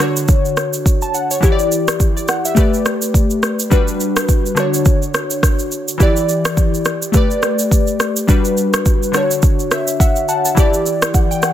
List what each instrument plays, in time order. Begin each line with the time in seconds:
Already playing: synth keys D3
0.00 synth keys D4 F#4 C#5, cross-stick, shaker
0.17 shaker
0.28 kick, shaker
0.45 shaker
0.57 cross-stick, shaker
0.73 shaker
0.86 kick, shaker
1.02 synth keys A5, shaker
1.14 synth keys F#5, shaker
1.31 synth keys C#5, shaker
1.40 synth keys E3 E4 G4, kick, shaker
1.45 synth keys C#5
1.52 synth keys D5
1.59 shaker
1.72 shaker
1.88 cross-stick, shaker
2.00 kick, shaker
2.17 synth keys D5, shaker
2.28 synth keys F#5, cross-stick, shaker
2.45 synth keys E5, shaker
2.55 synth keys A3 G4 B4, kick, shaker
2.60 synth keys D5
2.74 shaker
2.86 cross-stick, shaker
3.02 shaker
3.14 kick, shaker
3.30 shaker
3.43 cross-stick, shaker
3.60 shaker
3.70 synth keys G3 D4 F#4 B4, kick, shaker
3.88 shaker
4.00 shaker
4.17 cross-stick, shaker
4.29 kick, shaker
4.46 shaker
4.55 synth keys D3 D4 F#4, cross-stick, shaker
4.60 synth keys C#5
4.74 shaker
4.85 kick, shaker
5.02 shaker
5.14 cross-stick, shaker
5.31 shaker
5.43 kick, cross-stick, shaker
5.59 shaker
5.72 shaker
5.88 shaker
5.98 synth keys E3 E4 G4, kick, shaker
6.03 synth keys D5
6.17 shaker
6.29 shaker
6.45 cross-stick, shaker
6.57 kick, shaker
6.74 shaker
6.85 cross-stick, shaker
7.02 shaker
7.12 synth keys A3 G4 B4, kick, shaker
7.17 synth keys D5
7.31 shaker
7.43 cross-stick, shaker
7.59 shaker
7.71 kick, shaker
7.87 shaker
8.00 cross-stick, shaker
8.17 shaker
8.27 synth keys G3 D4 F#4 B4, kick, shaker
8.45 shaker
8.57 shaker
8.74 cross-stick, shaker
8.86 kick, shaker
9.03 shaker
9.12 synth keys D3 D4 F#4, cross-stick, shaker
9.17 synth keys C#5
9.31 shaker
9.42 kick, shaker
9.59 shaker
9.71 synth keys E5, cross-stick, shaker
9.88 shaker
10.00 synth keys E5 F#5, kick, shaker
10.16 shaker
10.29 synth keys F#5 A5, shaker
10.45 synth keys A5, shaker
10.55 synth keys E3 E4 G4, kick, shaker
10.60 synth keys D5
10.74 shaker
10.86 shaker
11.02 cross-stick, shaker
11.14 synth keys F#5, kick, shaker
11.31 synth keys G5, shaker
11.42 synth keys F#5, cross-stick, shaker